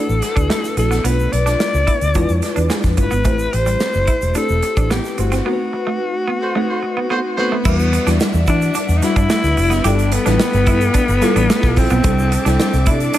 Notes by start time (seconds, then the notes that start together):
Already playing: A3 D4 E4 F#4 A4 B4 F#5
0.09 A1, shaker
0.22 muted clean electric guitar stroke, snare, closed hi-hat, shaker
0.36 D2 D4, kick, closed hi-hat, shaker
0.50 A3, snare, shaker
0.64 snare, closed hi-hat, shaker
0.77 A#1 A3 D4 E4 F#4 A4, muted clean electric guitar stroke, closed hi-hat, shaker
0.91 B3, snare, closed hi-hat, shaker
1.04 B1 A3 B3 D4 F4 B4, closed hi-hat, shaker
1.19 shaker
1.32 B1 D5, muted clean electric guitar stroke, closed hi-hat
1.46 D4, snare, closed hi-hat, shaker
1.60 snare, shaker
1.74 C#2, shaker
1.87 E4, kick, closed hi-hat
2.01 D2, closed hi-hat, shaker
2.14 E2 G#3 D4 E4 F4 B4, kick, closed hi-hat, shaker
2.29 F2, closed hi-hat, shaker
2.42 muted clean electric guitar stroke, snare, closed hi-hat, shaker
2.56 E2 D4, closed hi-hat, shaker
2.70 G#3, snare, shaker
2.83 F2, kick, snare, closed hi-hat, shaker
2.97 G1 G#3 D4 E4 F4 B4, muted clean electric guitar stroke, kick, closed hi-hat, shaker
3.11 G#1 B3, closed hi-hat, shaker
3.25 A1 A3 C4 E4 G4 C5, kick, closed hi-hat, shaker
3.38 closed hi-hat, shaker
3.53 A1 C5, muted clean electric guitar stroke, closed hi-hat
3.66 G3, closed hi-hat, shaker
3.80 snare, shaker
3.93 F#1, shaker
4.07 E4, kick, closed hi-hat
4.22 E1, closed hi-hat, shaker
4.35 A3 C4 D4 E4 G4 A4 B4, closed hi-hat, shaker
4.42 C5
4.49 E1, shaker
4.63 muted clean electric guitar stroke, closed hi-hat, shaker
4.77 A1 D4, kick, closed hi-hat, shaker
4.90 B3 G4, snare, shaker
5.04 snare, shaker
5.18 G1 A3 C4 E4 F#4 G4 C5, muted clean electric guitar stroke, closed hi-hat, shaker
5.32 C4, snare, closed hi-hat, shaker
5.45 A3 B3 C4 D#4 F#4 A#4
5.53 B4
5.73 muted clean electric guitar stroke
5.87 A3
6.28 B3
6.41 A3 F#4 C5
6.55 A3 C4 D#4 F#4 B4
6.68 A3 F#4 C5
6.83 muted clean electric guitar stroke
6.97 B3
7.10 A3 B3 F#4 C5
7.37 A3 B3 C4 D#4 F#4 B4 C5, muted clean electric guitar stroke
7.52 A3
7.64 E2 G3 B3 D4 E4 F#4 B4 D5 E5 F#5, kick, crash, shaker
7.79 shaker
7.93 muted clean electric guitar stroke, closed hi-hat, shaker
8.07 E2 G3 D4 E4 F#4 D5, snare, closed hi-hat, shaker
8.20 snare, shaker
8.34 E2, shaker
8.47 E3 D4 E4, kick, closed hi-hat, shaker
8.61 closed hi-hat, shaker
8.74 D4, closed hi-hat, shaker
8.88 E2, closed hi-hat, shaker
8.97 D#4
9.02 G3 D4 E4 F#4 B4, muted clean electric guitar stroke, snare, closed hi-hat, shaker
9.16 G2 D4, kick, closed hi-hat, shaker
9.30 A3, snare, shaker
9.44 D2, snare, closed hi-hat, shaker
9.57 F1, muted clean electric guitar stroke, open hi-hat, shaker
9.70 F#1 B3, snare, closed hi-hat, shaker
9.84 G1 G3 B3 D4 E4 F4 G4 A4 E5 G5 B5, closed hi-hat, shaker
9.99 closed hi-hat, shaker
10.12 B3, muted clean electric guitar stroke, closed hi-hat, shaker
10.26 A1 G3 B3 D4 E4 F4 B4, snare, closed hi-hat, shaker
10.40 snare, shaker
10.53 G1, closed hi-hat, shaker
10.66 G2 E4, kick, closed hi-hat, shaker
10.81 closed hi-hat, shaker
10.94 D4, kick, closed hi-hat, shaker
11.08 G1, closed hi-hat, shaker
11.21 G3 B3 E4 F4 A4, muted clean electric guitar stroke, snare, closed hi-hat, shaker
11.36 A1 D4, closed hi-hat, shaker
11.50 A3, snare, shaker
11.63 B1, kick, snare, shaker
11.76 A#1 C4, muted clean electric guitar stroke, kick, open hi-hat, shaker
11.90 B1 B3, closed hi-hat, shaker
12.04 C2 G3 C4 D4 E4 A4 D6, kick, closed hi-hat, shaker
12.19 shaker
12.32 muted clean electric guitar stroke, closed hi-hat, shaker
12.45 C2 G3 C4 D4 E4 A4, snare, closed hi-hat, shaker
12.60 snare, shaker
12.73 C2, closed hi-hat, shaker
12.86 C3 D4 E4, kick, closed hi-hat, shaker
13.00 closed hi-hat, shaker
13.14 D4, closed hi-hat, shaker